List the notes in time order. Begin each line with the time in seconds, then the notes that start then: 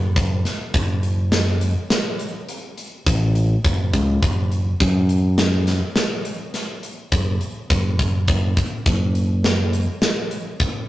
Already playing: F#1
0.16 F#1, kick, closed hi-hat
0.45 snare, closed hi-hat
0.74 F#1, kick, closed hi-hat
1.03 closed hi-hat
1.32 snare, closed hi-hat
1.61 closed hi-hat
1.90 snare, closed hi-hat
2.19 closed hi-hat
2.49 closed hi-hat
2.78 closed hi-hat
3.06 A1, kick, closed hi-hat
3.35 closed hi-hat
3.65 F#1, kick, closed hi-hat
3.94 C#2, kick, closed hi-hat
4.22 F#1, kick, closed hi-hat
4.52 closed hi-hat
4.80 F#2, kick, closed hi-hat
5.09 closed hi-hat
5.38 snare, closed hi-hat
5.67 snare, closed hi-hat
5.96 snare, closed hi-hat
6.25 closed hi-hat
6.54 snare, closed hi-hat
6.83 closed hi-hat
7.12 F#1, kick, closed hi-hat
7.41 closed hi-hat
7.70 F#1, kick, closed hi-hat
7.99 F#1, kick, closed hi-hat
8.28 F#1, kick, closed hi-hat
8.57 kick, closed hi-hat
8.86 F#1, kick, closed hi-hat
9.15 closed hi-hat
9.44 snare, closed hi-hat
9.73 closed hi-hat
10.02 snare, closed hi-hat
10.31 closed hi-hat
10.60 kick, closed hi-hat